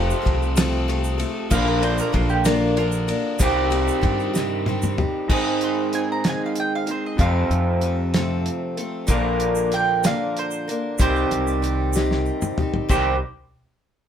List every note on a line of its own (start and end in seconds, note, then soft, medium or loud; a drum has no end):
0.00 0.11 F1 medium
0.00 1.49 F2 medium
0.00 1.49 C3 medium
0.00 0.21 F3 soft
0.00 1.50 F3 loud
0.00 0.22 A3 soft
0.00 1.50 A3 medium
0.00 0.23 C4 medium
0.00 1.50 C4 medium
0.00 1.51 F4 loud
0.00 0.24 A4 medium
0.10 shaker medium
0.22 0.55 F3 medium
0.22 0.56 A3 medium
0.22 0.56 C4 medium
0.22 0.55 A4 medium
0.26 1.22 C2 medium
0.26 kick medium
0.26 ride medium
0.42 shaker soft
0.56 0.90 F2 medium
0.56 0.89 C3 medium
0.56 0.87 F3 medium
0.56 0.87 A3 medium
0.56 0.88 C4 medium
0.56 0.88 A4 medium
0.56 snare loud
0.56 ride loud
0.56 shaker medium
0.88 1.20 F3 medium
0.88 1.19 A3 medium
0.88 1.18 C4 medium
0.88 1.17 A4 medium
0.88 ride medium
1.04 shaker medium
1.18 1.49 F3 medium
1.18 1.51 A3 medium
1.18 1.51 C4 medium
1.18 1.50 A4 medium
1.18 ride medium
1.18 shaker soft
1.50 2.00 A#1 loud
1.50 1.82 A#2 medium
1.50 3.38 D3 medium
1.50 1.82 F3 medium
1.50 1.83 A#3 medium
1.50 1.81 D4 loud
1.50 1.80 A#4 loud
1.50 1.66 F5 loud
1.50 kick loud
1.50 crash loud
1.50 shaker loud
1.54 3.40 F4 loud
1.68 1.82 A#4 medium
1.82 2.12 A#3 soft
1.82 2.13 D4 medium
1.82 2.14 A#4 medium
1.82 1.98 C5 medium
1.82 ride medium
1.98 2.14 A#4 medium
1.98 shaker medium
2.12 3.11 A#1 loud
2.12 2.45 F3 medium
2.12 2.45 A#3 medium
2.12 2.44 D4 medium
2.12 2.29 F4 medium
2.12 2.44 A#4 medium
2.12 kick medium
2.12 ride medium
2.29 2.44 G4 medium
2.29 shaker soft
2.45 2.78 A#2 medium
2.45 2.76 F3 medium
2.45 2.77 A#3 medium
2.45 2.77 D4 medium
2.45 2.76 F4 medium
2.45 2.77 A#4 medium
2.45 snare loud
2.45 ride loud
2.45 shaker loud
2.77 3.09 F3 medium
2.77 3.09 A#3 medium
2.77 3.09 D4 medium
2.77 4.62 F4 medium
2.77 3.07 A#4 medium
2.77 ride medium
2.92 shaker medium
3.08 3.40 A#3 medium
3.08 3.40 D4 medium
3.08 3.40 A#4 medium
3.08 ride medium
3.08 shaker soft
3.39 3.88 C2 loud
3.39 3.71 C3 medium
3.39 3.71 D#3 medium
3.39 5.28 G3 loud
3.39 3.71 C4 loud
3.39 3.70 D#4 loud
3.39 3.69 G4 medium
3.39 kick loud
3.39 ride loud
3.39 shaker loud
3.70 4.01 C4 medium
3.70 4.02 D#4 medium
3.70 4.02 G4 medium
3.70 ride medium
3.70 shaker soft
3.88 shaker medium
4.01 5.00 G2 medium
4.01 4.34 D#3 medium
4.01 4.34 C4 medium
4.01 4.33 D#4 medium
4.01 4.32 G4 medium
4.01 kick medium
4.01 ride medium
4.19 shaker soft
4.34 4.67 C3 medium
4.34 4.65 D#3 medium
4.34 4.66 C4 medium
4.34 4.66 D#4 medium
4.34 4.66 G4 medium
4.34 snare medium
4.34 shaker loud
4.66 4.98 D#3 medium
4.66 4.98 C4 medium
4.66 4.99 D#4 medium
4.66 4.97 G4 medium
4.66 high tom medium
4.82 mid tom medium
4.82 shaker medium
4.98 5.30 C4 soft
4.98 5.30 D#4 medium
4.98 5.29 G4 medium
4.98 mid tom loud
5.29 5.93 G#2 medium
5.29 6.26 G#2 medium
5.29 5.93 D#3 medium
5.29 5.93 G#3 medium
5.29 5.93 C4 medium
5.29 5.93 D#4 medium
5.29 5.94 G#4 medium
5.29 kick loud
5.29 crash loud
5.61 5.93 C6 medium
5.61 closed hi-hat medium
5.93 6.25 G#3 medium
5.93 6.25 C4 medium
5.93 6.25 D#4 medium
5.93 6.25 G#4 medium
5.93 6.08 G#5 medium
5.93 closed hi-hat medium
6.12 6.25 A#5 medium
6.24 6.89 G#2 medium
6.24 6.89 D#3 medium
6.24 6.89 G#3 medium
6.24 6.88 C4 medium
6.24 6.87 D#4 medium
6.24 6.85 G#4 medium
6.24 snare loud
6.24 closed hi-hat medium
6.29 6.41 G#5 medium
6.46 6.58 F5 medium
6.56 closed hi-hat medium
6.60 6.73 G5 medium
6.75 6.88 F5 medium
6.86 7.19 C4 soft
6.86 7.19 D#4 soft
6.86 7.18 G#4 medium
6.86 closed hi-hat medium
6.90 7.20 G#3 soft
6.90 7.04 C5 medium
7.06 7.20 D#5 medium
7.18 7.82 F2 medium
7.18 7.43 F2 medium
7.18 7.82 C3 medium
7.18 7.83 F3 medium
7.18 7.83 A3 medium
7.18 7.83 C4 medium
7.18 9.08 F4 medium
7.18 7.83 A4 medium
7.18 9.06 F5 medium
7.18 kick loud
7.18 closed hi-hat medium
7.50 8.47 F2 medium
7.50 closed hi-hat medium
7.81 8.14 F3 medium
7.81 8.15 A3 medium
7.81 8.14 C4 medium
7.81 closed hi-hat medium
7.86 8.13 A4 medium
8.14 8.79 F2 medium
8.14 8.78 C3 medium
8.14 8.78 F3 medium
8.14 8.78 A3 medium
8.14 8.77 C4 medium
8.14 8.76 A4 medium
8.14 snare loud
8.14 closed hi-hat medium
8.46 closed hi-hat medium
8.77 9.07 F3 soft
8.77 9.07 A3 medium
8.77 9.08 C4 medium
8.77 9.09 A4 medium
8.77 closed hi-hat medium
9.07 10.06 A#1 medium
9.07 9.71 A#2 medium
9.07 10.97 D3 medium
9.07 9.70 F3 medium
9.07 9.71 A#3 medium
9.07 9.72 D4 medium
9.07 9.72 A#4 loud
9.07 kick loud
9.07 closed hi-hat loud
9.07 shaker loud
9.11 10.98 F4 medium
9.40 closed hi-hat medium
9.55 shaker medium
9.72 10.04 F3 medium
9.72 10.04 A#3 medium
9.72 10.03 D4 medium
9.72 10.02 A#4 medium
9.72 10.04 G5 loud
9.72 closed hi-hat medium
9.72 shaker soft
10.04 10.68 A#2 medium
10.04 10.68 F3 medium
10.04 10.68 A#3 medium
10.04 10.68 D4 medium
10.04 10.66 A#4 medium
10.04 10.36 F5 medium
10.04 snare loud
10.04 closed hi-hat loud
10.04 shaker loud
10.37 10.99 C5 medium
10.37 closed hi-hat medium
10.51 shaker medium
10.68 11.01 A#3 soft
10.68 11.00 D4 soft
10.68 10.99 A#4 medium
10.68 closed hi-hat medium
10.98 11.24 C2 medium
10.98 11.63 C3 medium
10.98 11.61 D#3 medium
10.98 12.88 G3 medium
10.98 11.61 C4 medium
10.98 11.64 D#4 medium
10.98 11.61 C5 loud
10.98 kick loud
10.98 closed hi-hat loud
10.98 shaker loud
11.03 11.64 G4 loud
11.16 shaker soft
11.31 12.28 C2 medium
11.31 closed hi-hat medium
11.47 shaker medium
11.62 11.94 D#3 medium
11.62 11.94 C4 medium
11.62 11.95 D#4 medium
11.62 11.94 G4 medium
11.62 closed hi-hat medium
11.62 shaker soft
11.93 12.58 C4 medium
11.93 12.58 D#4 medium
11.93 12.57 G4 medium
11.93 snare medium
11.93 shaker loud
11.97 12.59 C3 medium
11.97 12.59 D#3 medium
12.11 snare medium
12.26 shaker soft
12.42 mid tom medium
12.42 shaker medium
12.58 12.89 D#4 medium
12.58 12.90 G4 medium
12.58 mid tom loud
12.62 12.89 C4 soft
12.74 floor tom medium
12.89 13.19 C2 medium
12.89 13.14 C3 medium
12.89 13.15 D#3 medium
12.89 13.15 G3 medium
12.89 13.15 C4 medium
12.89 13.15 D#4 medium
12.89 13.15 G4 medium
12.89 13.19 C5 medium
12.89 kick loud
12.89 china medium
12.89 shaker medium